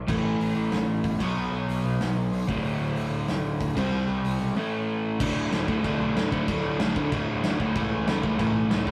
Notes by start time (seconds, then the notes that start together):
0.07 A1 A2 E3 A3, kick, crash
0.24 A1
0.40 A1, open hi-hat
0.56 A1
0.72 A1, snare, open hi-hat
0.88 A1
1.04 G1, kick, open hi-hat
1.19 B1 B2 F#3 B3, kick, crash
1.36 B1
1.51 B1
1.68 B1, open hi-hat
1.84 B1
2.00 B1, snare, open hi-hat
2.15 B1
2.32 B1, open hi-hat
2.47 D1 D2 A2 D3, kick
2.63 D1, open hi-hat
2.79 D1
2.95 D1, open hi-hat
3.11 D1
3.28 D1, snare, open hi-hat
3.44 D1
3.60 D1, kick, open hi-hat
3.75 C2 C3 G3 C4, kick, crash
3.93 C2
4.09 C2
4.25 C2, open hi-hat
4.40 B1
4.56 A2 E3 A3
5.20 D1 D2 A2 D3, kick, crash
5.36 D1
5.52 D1 D2 A2 D3, snare, crash
5.68 D1 D2 A2 D3, kick
5.84 D1 D2 A2 D3, kick, crash
5.99 B1
6.16 D2 A2 D3, snare, crash
6.31 D2 A2 D3, kick
6.48 D1 D2 A2 D3, kick, crash
6.64 D1
6.80 A1 D2 A2 D3, snare, crash
6.95 D2 A2 D3, kick
7.12 D1 D2 A2 D3, kick, crash
7.28 D1
7.43 D2 A2 D3, snare, crash
7.60 D1 D2 A2 D3, kick
7.75 C#2 A2 E3 A3, kick, crash
7.92 C#2
8.07 C#2 A2 E3 A3, snare, crash
8.23 C#2 A2 E3 A3, kick
8.39 C#2 A2 E3 A3, kick, crash
8.55 B1
8.70 C#2 A2 E3 A3, snare, crash
8.87 E3 A3, kick